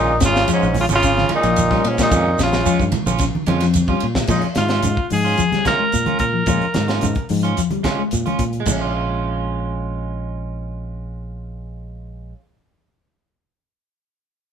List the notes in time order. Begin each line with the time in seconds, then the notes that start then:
Already playing: A#1 A#2 D#3 G#3 C#4 D#4 F4
0.20 G#1 C#3, kick, snare, ride bell, shekere
0.25 F4
0.36 snare, shekere
0.47 F3 G#3 C#4 F4, ride bell, shekere
0.52 G#2 C#4
0.62 A#1, shekere
0.74 D#3, open hi-hat, high conga, low conga, shekere
0.80 C#3 F4
0.89 G#1 C#3 C#4 F4, high conga, shekere
0.95 F4
1.03 C#3, kick, ride bell, shekere
1.17 D#3, snare, high conga
1.29 G#3 C#4 F4, muted fingered electric bass stroke, ride bell, high conga
1.34 A#2 D#4
1.43 A#1 F3, ride bell, shekere
1.56 ride bell, high conga, shekere
1.70 G3 C#4 F4, kick, snare
1.84 A#2 C#4, ride bell
1.89 G#2
1.98 A#2 G#3, kick, snare, ride bell, high conga, shekere
2.03 D#4
2.11 F2 D#3 G#3 C#4 F4, kick, ride bell, low conga, shekere
2.39 A#1 C#3, snare, ride bell, shekere
2.43 F4
2.52 snare, high conga, shekere
2.66 F3 G#3 C#4 F4, ride bell, shekere
2.79 G2, kick, shekere
2.92 D#3, ride bell, high conga, low conga, shekere
3.06 A#1 C#4 F4, high conga, shekere
3.18 C#3, kick, snare, ride bell, shekere
3.35 D#3, high conga
3.46 F2 G#3 C#4 F4, ride bell, high conga
3.60 F3, snare, ride bell, shekere
3.74 ride bell, high conga, shekere
3.88 G3 C#4 F4, kick
4.00 A#2, ride bell
4.15 muted clean electric guitar stroke, kick, snare, high conga, shekere
4.27 A#2 F3 G#3 C#4 D#4 F4, kick, crash, low conga, shekere
4.42 closed hi-hat
4.55 G#2 D#3 F4, snare, closed hi-hat, high conga, shekere
4.68 C#4 F4, snare, closed hi-hat
4.83 G#2 C#3, closed hi-hat, high conga, low conga, shekere
4.97 kick
5.10 G#2 F3 G#4, open hi-hat, shekere
5.25 C#4 F4
5.38 F3, closed hi-hat, high conga, shekere
5.51 G3, snare, closed hi-hat, high conga
5.65 G#3 C#4 F4 A#4, kick, snare, closed hi-hat, high conga, shekere
5.79 G#3
5.92 A#2, closed hi-hat, shekere
6.06 G#3 C#4 F4, closed hi-hat, high conga
6.19 A#2 A#4, kick, closed hi-hat, high conga, shekere
6.33 F3
6.46 A#2 F3 G#3 C#4 F4, kick, closed hi-hat, low conga, shekere
6.61 closed hi-hat
6.74 G#2 D#3, snare, closed hi-hat, high conga, shekere
6.88 C#4 F4, snare, closed hi-hat
7.01 G#2 C#3, closed hi-hat, high conga, low conga, shekere
7.15 kick, closed hi-hat
7.29 G#2 F3, open hi-hat, shekere
7.43 C#4 F4, closed hi-hat
7.57 F3, closed hi-hat, shekere
7.71 G3, closed hi-hat, high conga
7.83 G#3 C#4 F4, kick, snare, closed hi-hat, high conga, shekere
7.99 G#3
8.11 A#2, closed hi-hat, shekere
8.26 G#3 C#4 F4, closed hi-hat, high conga
8.39 A#2, kick, closed hi-hat, shekere
8.53 closed hi-hat
8.60 G#3
8.65 A#1 A#2, kick, crash, low conga, shekere
8.72 C#4
8.81 F4